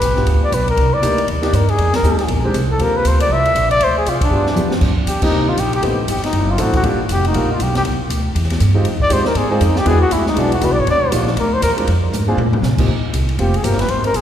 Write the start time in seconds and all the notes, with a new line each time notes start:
Already playing: B4
0.01 B1, kick, hi-hat pedal, ride
0.16 B3 D4 F4 G4, snare
0.26 D2, kick, ride
0.44 D5
0.52 B1 B4, kick, hi-hat pedal, ride
0.68 A#4, ride
0.77 C2, kick, ride
0.94 D5
1.01 D2 A#3 D4 D#4 G4, kick, hi-hat pedal, ride
1.18 ride
1.27 D#2, kick, ride
1.42 A#3 D4 D#4 G4 D5, snare, ride
1.53 G2 A#4, kick, hi-hat pedal, ride
1.69 G#4, ride
1.78 F2, kick, ride
1.93 A#4, snare, ride
2.02 D#2 G#3 A#3 D#4 G4, hi-hat pedal
2.18 snare, ride
2.28 A#1, kick, ride
2.44 G#3 C4 D4 G4
2.54 C2, kick, hi-hat pedal, ride
2.72 A4
2.79 D#2 A#3 C4 F4 G4 A#4, kick, ride
2.96 B4
3.04 D2 C5, kick, hi-hat pedal, ride
3.20 D5, ride
3.29 C2 E5, kick
3.45 ride
3.55 A#1, kick, hi-hat pedal, ride
3.71 D5, ride
3.81 D2 C5, kick, ride
3.98 G#4
4.06 C2 F4, kick, hi-hat pedal, ride
4.21 D4, kick, ride
4.30 G2 B3 D4 F4 G4
4.46 snare
4.55 F2 B3 D4 F4 G4, hi-hat pedal, mid tom
4.71 snare
4.81 G2, kick, snare, crash
4.97 kick
5.07 D#2 G4, kick, hi-hat pedal, ride
5.22 A#3 C4 D4 D#4 G4, kick, crash
5.32 C2
5.49 F4
5.57 A#1 G4, kick, hi-hat pedal, ride
5.73 G4, ride
5.82 A1 A3 B3 C4 D#4 G4, kick, ride
6.08 G1 G4, kick, hi-hat pedal, ride
6.17 snare
6.24 D#4, snare, ride
6.33 F#1, kick, ride
6.51 F4
6.58 A1 A3 C4 D4 E4 F#4 A4, kick, hi-hat pedal, ride
6.73 F#4, kick, ride
6.83 G1 G3 A#3 D4 F4 G4, kick, ride
7.09 F1, kick, hi-hat pedal, ride
7.13 G4
7.25 D#4, ride
7.34 A#1 G3 A#3 D4 F4 A#4, kick, ride
7.53 F4
7.59 B1 G4, kick, hi-hat pedal, ride
7.75 G4, snare, ride
7.85 C2, kick, ride
8.00 muted upright bass stroke
8.10 D2, kick, hi-hat pedal, ride
8.35 E2, kick, ride
8.43 snare
8.50 snare, ride
8.60 G2, kick, hi-hat pedal, ride
8.74 G#3 C4 D#4 F4 G4
8.85 F2, kick, ride
9.00 D5, kick
9.09 D#2 G#3 C4 D#4 F4 G4 C5, kick, hi-hat pedal, ride
9.25 A#4, snare
9.35 G#2 G#4, kick, ride
9.50 G#3 C4 D#4 F4 G#4
9.60 F2 D#4, kick, hi-hat pedal, ride
9.76 G4, snare
9.85 E2 G#3 B3 D4 E4 F#4 G#4, kick, ride
10.02 F#4
10.11 D2 E4, kick, hi-hat pedal, ride
10.26 D#4, snare
10.36 B1 G#3 B3 D4 E4 F#4, kick, ride
10.52 F#4, ride
10.61 C#2 G#3 B3 D4 E4 F#4 B4, kick, hi-hat pedal, ride
10.69 B1 D5
10.78 G#1 C#5
10.87 D#2, kick, ride
10.91 D5
11.11 A#1 G3 A#3 D4 D#4 F4, kick, hi-hat pedal, ride
11.27 snare
11.37 D2 A#4, kick, ride
11.53 C5
11.62 D#2 A#4, kick, hi-hat pedal, ride
11.76 G#3 C4 D4 F4 A#4, ride
11.87 F2, kick, ride
12.12 G#2, hi-hat pedal, high tom
12.28 A#3 C4 D4 F4 G#4
12.37 A#2, high tom
12.53 floor tom
12.62 C3, snare, hi-hat pedal
12.78 A#3 C4 D#4 F4 G4, kick, crash
12.88 D#2, kick
13.13 C2, kick, hi-hat pedal, ride
13.29 ride
13.38 F1 A#3 C4 F4 G4, kick, ride
13.54 G#4, ride
13.63 G1 A#3 C4 F4 G4 A#4, kick, hi-hat pedal, ride
13.72 snare
13.79 B4, snare, ride
13.88 G#1 C5, kick, ride
14.04 A#4, ride
14.14 A#1 G#4, kick, hi-hat pedal, ride